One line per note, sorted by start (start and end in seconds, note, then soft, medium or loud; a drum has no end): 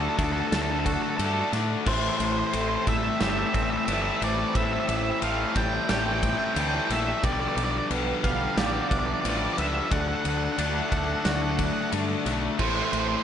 0.00 0.16 D3 medium
0.00 0.86 D3 medium
0.00 1.84 D3 medium
0.00 1.84 F#3 medium
0.00 0.18 A3 medium
0.00 7.19 A3 medium
0.00 0.17 D4 loud
0.00 0.85 F#4 medium
0.00 1.84 F#4 medium
0.00 0.09 A4 medium
0.00 0.52 E5 medium
0.09 0.17 A4 medium
0.17 0.40 D2 loud
0.17 0.51 D3 medium
0.17 0.52 A3 medium
0.17 1.51 D4 medium
0.17 0.52 D4 medium
0.17 0.24 A4 medium
0.17 kick medium
0.17 ride medium
0.24 0.32 A4 medium
0.32 0.40 A4 medium
0.40 0.47 A4 medium
0.48 0.55 A4 medium
0.52 0.95 D2 loud
0.52 1.17 D3 medium
0.52 1.19 A3 medium
0.52 1.18 D4 medium
0.52 2.90 A4 medium
0.52 0.62 A4 medium
0.52 0.86 D5 medium
0.52 snare loud
0.52 ride loud
0.63 0.70 A4 medium
0.71 0.79 A4 medium
0.80 0.85 A4 medium
0.85 1.87 F#4 medium
0.85 0.93 A4 medium
0.85 1.19 E5 medium
0.85 kick medium
0.85 ride medium
0.93 1.01 A4 medium
1.03 1.10 A4 medium
1.10 1.17 A4 medium
1.17 1.41 G2 loud
1.17 1.51 D3 medium
1.17 1.53 A3 medium
1.17 2.87 A3 medium
1.17 1.52 D4 loud
1.17 1.25 A4 medium
1.17 1.86 D5 medium
1.17 ride loud
1.26 1.33 A4 medium
1.34 1.40 A4 medium
1.40 1.48 A4 medium
1.52 1.74 A2 medium
1.52 1.84 D3 loud
1.52 1.86 A3 medium
1.52 1.86 D4 medium
1.52 1.85 D4 loud
1.52 snare soft
1.52 ride medium
1.86 2.08 A1 medium
1.86 2.52 A2 loud
1.86 3.54 A2 medium
1.86 2.53 E3 loud
1.86 7.19 E3 medium
1.86 2.54 A3 loud
1.86 7.19 C4 medium
1.86 9.87 G4 medium
1.86 2.54 C5 medium
1.86 1.94 C5 medium
1.86 kick loud
1.86 crash loud
1.94 2.01 C5 medium
2.03 2.09 C5 medium
2.10 2.16 C5 medium
2.17 2.42 A1 loud
2.17 2.24 C5 medium
2.17 ride medium
2.25 2.32 C5 medium
2.32 2.39 C5 medium
2.39 2.46 C5 medium
2.47 2.54 C5 medium
2.53 2.75 A1 loud
2.53 2.86 A2 medium
2.53 2.87 E3 medium
2.53 2.87 A3 medium
2.53 3.53 C4 medium
2.53 2.87 A4 medium
2.53 2.61 C5 medium
2.53 ride loud
2.61 2.69 C5 medium
2.69 2.75 C5 medium
2.76 2.83 C5 medium
2.86 3.09 A1 medium
2.86 3.19 A2 medium
2.86 3.19 E3 loud
2.86 4.21 G3 medium
2.86 3.20 A3 loud
2.86 3.20 E5 medium
2.86 3.21 E5 medium
2.86 kick loud
2.86 ride medium
3.20 3.43 G1 loud
3.20 3.87 A2 loud
3.20 3.87 E3 loud
3.20 3.87 A3 loud
3.20 5.89 G4 medium
3.20 3.30 E5 medium
3.20 snare loud
3.20 ride loud
3.30 3.38 E5 medium
3.39 3.46 E5 medium
3.47 3.54 E5 medium
3.54 3.76 A1 medium
3.54 5.21 C4 medium
3.54 4.21 D5 medium
3.54 3.62 E5 medium
3.54 kick medium
3.54 ride medium
3.63 3.70 E5 medium
3.70 3.77 E5 medium
3.77 3.85 E5 medium
3.86 4.10 G1 loud
3.86 4.20 A2 medium
3.86 5.56 E3 medium
3.86 4.20 E3 medium
3.86 4.21 A3 loud
3.86 3.93 E5 medium
3.86 ride loud
3.93 4.01 E5 medium
4.02 4.10 E5 medium
4.10 4.16 E5 medium
4.16 4.24 E5 medium
4.21 4.43 A1 loud
4.21 4.54 A2 medium
4.21 4.54 E3 medium
4.21 5.55 G3 medium
4.21 4.55 A3 loud
4.21 4.54 C5 medium
4.21 4.56 D5 medium
4.21 ride medium
4.55 4.77 A1 medium
4.55 5.21 A2 loud
4.55 6.23 A2 medium
4.55 5.21 E3 loud
4.55 5.22 A3 loud
4.55 4.88 C5 medium
4.55 4.63 E5 loud
4.55 kick loud
4.55 ride loud
4.64 4.72 E5 medium
4.73 4.79 E5 medium
4.80 4.87 E5 medium
4.87 5.10 A1 loud
4.87 4.95 E5 medium
4.87 ride medium
4.97 5.03 E5 medium
5.03 5.11 E5 medium
5.11 5.19 E5 medium
5.22 5.44 A1 medium
5.22 5.54 A2 medium
5.22 5.55 E3 loud
5.22 5.55 A3 loud
5.22 6.22 C4 medium
5.22 5.54 F5 loud
5.22 5.89 E6 loud
5.22 ride loud
5.55 5.77 A1 loud
5.55 5.88 A2 medium
5.55 5.88 E3 loud
5.55 6.88 G3 medium
5.55 5.88 A3 medium
5.55 5.89 G5 loud
5.55 kick medium
5.55 ride medium
5.89 6.33 A1 loud
5.89 6.55 A2 loud
5.89 6.56 E3 loud
5.89 6.56 A3 loud
5.89 7.23 G4 medium
5.89 6.23 D5 medium
5.89 5.98 G5 loud
5.89 snare loud
5.89 ride loud
5.99 6.06 G5 medium
6.06 6.13 G5 medium
6.14 6.21 G5 medium
6.21 7.23 C4 medium
6.21 6.56 E5 medium
6.21 6.29 G5 loud
6.21 kick medium
6.21 ride loud
6.30 6.38 G5 medium
6.38 6.45 G5 medium
6.45 6.53 G5 medium
6.54 6.78 D2 loud
6.54 6.88 A2 medium
6.54 7.23 E3 medium
6.54 6.89 E3 medium
6.54 6.89 A3 loud
6.54 7.22 D5 medium
6.54 6.61 G5 medium
6.54 ride loud
6.61 6.68 G5 medium
6.69 6.76 G5 medium
6.76 6.84 G5 medium
6.85 6.93 G5 medium
6.89 7.12 A#1 loud
6.89 7.21 A2 medium
6.89 7.21 E3 loud
6.89 7.23 G3 medium
6.89 7.21 A3 loud
6.89 7.24 E5 loud
6.89 snare soft
6.89 ride medium
7.23 7.45 B1 loud
7.23 7.89 G2 loud
7.23 8.91 B2 medium
7.23 7.90 D3 loud
7.23 9.89 F3 medium
7.23 7.90 G3 loud
7.23 9.89 B3 medium
7.23 12.56 D4 medium
7.23 7.90 D5 medium
7.23 7.32 D5 medium
7.23 kick loud
7.23 ride loud
7.33 7.40 D5 medium
7.40 7.48 D5 medium
7.48 7.55 D5 medium
7.56 7.78 B1 loud
7.56 7.64 D5 medium
7.56 ride medium
7.65 7.71 D5 medium
7.71 7.78 D5 medium
7.78 7.86 D5 medium
7.90 8.12 B1 loud
7.90 8.22 G2 medium
7.90 8.23 D3 loud
7.90 8.23 G3 loud
7.90 8.90 D4 medium
7.90 8.24 B4 medium
7.90 ride loud
8.23 8.46 B1 loud
8.23 8.56 G2 loud
8.23 8.56 D3 loud
8.23 8.57 G3 medium
8.23 9.57 B3 medium
8.23 8.57 F5 loud
8.23 8.56 F5 medium
8.23 kick medium
8.23 ride medium
8.57 8.79 A1 loud
8.57 9.23 G2 medium
8.57 9.23 D3 loud
8.57 9.23 G3 loud
8.57 9.91 G4 medium
8.57 8.66 D5 medium
8.57 8.91 F5 medium
8.57 snare loud
8.57 ride loud
8.66 8.73 D5 medium
8.73 8.81 D5 medium
8.82 8.89 D5 medium
8.89 9.13 B1 medium
8.89 9.91 D4 medium
8.89 8.97 D5 medium
8.89 9.58 E5 medium
8.89 kick medium
8.89 ride medium
8.99 9.06 D5 medium
9.06 9.13 D5 medium
9.14 9.21 D5 medium
9.21 9.46 A1 loud
9.21 9.56 G2 loud
9.21 9.57 D3 medium
9.21 9.91 F3 medium
9.21 9.57 G3 loud
9.21 9.29 D5 medium
9.21 ride loud
9.30 9.37 D5 medium
9.37 9.45 D5 medium
9.45 9.53 D5 medium
9.53 9.59 D5 medium
9.58 9.80 C#2 loud
9.58 9.89 G2 medium
9.58 9.89 D3 loud
9.58 9.90 G3 medium
9.58 9.91 B3 medium
9.58 9.90 D5 medium
9.58 9.90 E5 loud
9.58 ride medium
9.91 10.13 D2 loud
9.91 10.56 D3 loud
9.91 11.59 D3 medium
9.91 12.57 F#3 medium
9.91 10.58 A3 loud
9.91 13.23 A3 medium
9.91 10.57 D4 loud
9.91 12.57 A4 medium
9.91 10.23 D5 medium
9.91 9.99 F#5 loud
9.91 kick loud
9.91 ride loud
10.01 10.08 F#5 medium
10.08 10.15 F#5 medium
10.15 10.21 F#5 medium
10.22 10.47 D2 loud
10.22 10.58 D5 medium
10.22 10.29 F#5 medium
10.22 ride medium
10.29 10.37 F#5 medium
10.38 10.44 F#5 loud
10.45 10.52 F#5 medium
10.52 10.60 F#5 loud
10.58 10.80 D2 loud
10.58 10.90 D3 medium
10.58 10.92 A3 medium
10.58 10.91 D4 loud
10.58 11.58 D4 medium
10.58 11.25 E5 medium
10.58 10.67 F#5 medium
10.58 ride loud
10.67 10.75 F#5 loud
10.75 10.82 F#5 medium
10.82 10.89 F#5 loud
10.90 11.14 D2 loud
10.90 11.24 D3 medium
10.90 11.25 A3 medium
10.90 12.25 A3 medium
10.90 11.25 D4 loud
10.90 10.97 F#5 medium
10.90 kick medium
10.90 ride medium
10.97 11.04 F#5 loud
11.04 11.12 F#5 medium
11.13 11.20 F#5 loud
11.20 11.28 F#5 medium
11.25 11.68 D2 medium
11.25 11.91 D3 medium
11.25 11.92 A3 loud
11.25 11.92 D4 loud
11.25 12.59 F#4 medium
11.25 11.59 D5 medium
11.25 snare loud
11.25 ride loud
11.29 11.35 F#5 medium
11.36 11.42 F#5 medium
11.42 11.50 F#5 loud
11.51 11.57 F#5 medium
11.57 12.59 D4 medium
11.57 11.92 E5 medium
11.57 11.65 F#5 loud
11.57 kick medium
11.57 ride medium
11.65 11.73 F#5 medium
11.73 11.81 F#5 medium
11.81 11.89 F#5 medium
11.92 12.14 G2 loud
11.92 12.24 D3 medium
11.92 12.59 D3 medium
11.92 12.26 A3 loud
11.92 12.25 D4 loud
11.92 12.60 D5 medium
11.92 ride loud
12.25 12.47 B1 medium
12.25 12.57 D3 medium
12.25 13.23 A3 medium
12.25 12.59 A3 loud
12.25 12.57 D4 medium
12.25 snare soft
12.25 ride medium
12.58 12.81 A1 medium
12.58 13.23 A2 loud
12.58 13.23 A2 medium
12.58 13.23 E3 loud
12.58 13.23 E3 medium
12.58 13.23 A3 loud
12.58 13.23 C4 medium
12.58 13.23 G4 medium
12.58 13.23 C5 medium
12.58 12.69 C5 loud
12.58 kick loud
12.58 crash loud
12.70 12.75 C5 medium
12.76 12.84 C5 medium
12.85 12.92 C5 medium
12.92 13.14 A1 medium
12.92 12.99 C5 medium
12.92 ride medium
13.00 13.08 C5 medium
13.09 13.16 C5 medium
13.17 13.23 C5 medium